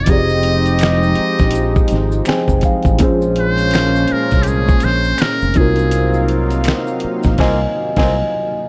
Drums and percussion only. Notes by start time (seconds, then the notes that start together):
0.06 kick, closed hi-hat, maracas
0.29 maracas
0.43 closed hi-hat
0.66 closed hi-hat, maracas
0.79 finger snap, closed hi-hat, maracas
0.83 finger snap, snare
1.03 maracas
1.15 closed hi-hat
1.39 kick, snare, closed hi-hat, maracas
1.51 closed hi-hat
1.55 maracas
1.76 kick, maracas
1.88 closed hi-hat, maracas
1.93 snare
2.12 maracas
2.25 finger snap, snare, closed hi-hat, maracas
2.29 finger snap
2.48 kick, maracas
2.61 kick, closed hi-hat, maracas
2.83 kick, closed hi-hat, maracas
2.99 kick, closed hi-hat, maracas
3.22 maracas
3.36 closed hi-hat
3.58 closed hi-hat, maracas
3.71 finger snap, closed hi-hat, maracas
3.75 finger snap, snare
3.96 maracas
4.08 closed hi-hat
4.31 kick, snare, closed hi-hat, maracas
4.43 closed hi-hat, maracas
4.68 kick, maracas
4.80 closed hi-hat, maracas
4.85 snare
5.04 maracas
5.18 finger snap, snare, closed hi-hat, maracas
5.22 finger snap
5.41 maracas
5.54 kick, closed hi-hat, maracas
5.76 closed hi-hat, maracas
5.91 closed hi-hat, maracas
6.14 maracas
6.28 closed hi-hat
6.50 closed hi-hat, maracas
6.64 finger snap, closed hi-hat, maracas
6.68 finger snap, snare
6.87 maracas
7.00 closed hi-hat
7.23 kick, snare, closed hi-hat, maracas
7.38 kick, snare, crash
7.96 kick, snare, crash